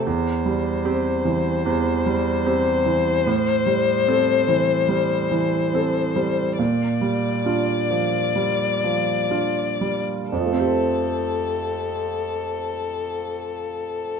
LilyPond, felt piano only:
\new Staff \with { instrumentName = "Felt piano" } { \clef bass \time 4/4 \key f \major \tempo 4 = 69 e,8 g8 <c' g'>8 e8 e,8 g8 <c' g'>8 e8 | a,8 g8 <c' a'>8 e8 g8 e8 <c' a'>8 g8 | bes,8 g8 <d' f'>8 f8 g8 f8 <d' f'>8 g8 | <f, f a c' g' c''>1 | }